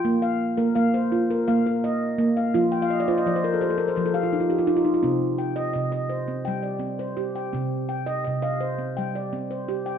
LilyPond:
<<
  \new Staff \with { instrumentName = "Handpan" } { \time 7/8 \key c \dorian \tempo 4 = 84 << { g''16 f''8 bes'16 f''16 c''8 bes'16 f''8 ees''8. f''16~ | f''16 g''32 f''32 ees''32 d''32 c''32 ees''32 d''32 c''32 bes'32 a'32 g'32 a'32 bes'32 c''32 bes'32 a'32 g'32 f'32 ees'32 f'32 g'32 f'32 ees'32 f'32 ees'32 f'32~ | f'32 r16. g''8 ees''8 c''8 g''16 d''8 c''8 g''16~ | g''8 g''8 ees''16 f''16 c''8 g''16 d''8 c''8 g''16 | } \\ { bes8 r16 bes8 r16 f'8 r16 bes'8 r16 bes8 | f'8 r16 f'8 r16 c''8 r16 f''8 r16 f'8 | c'8 r16 ees''8 ees''8 c'8 r16 c'8 g'8 | c'8 r16 ees''8 ees''8 c'8 r16 c'8 g'8 | } >> }
  \new Staff \with { instrumentName = "Handpan" } { \clef bass \time 7/8 \key c \dorian r4 bes4 bes4. | f4 f4 f4. | c4 c4 g8 r4 | c4 c4 g8 r4 | }
>>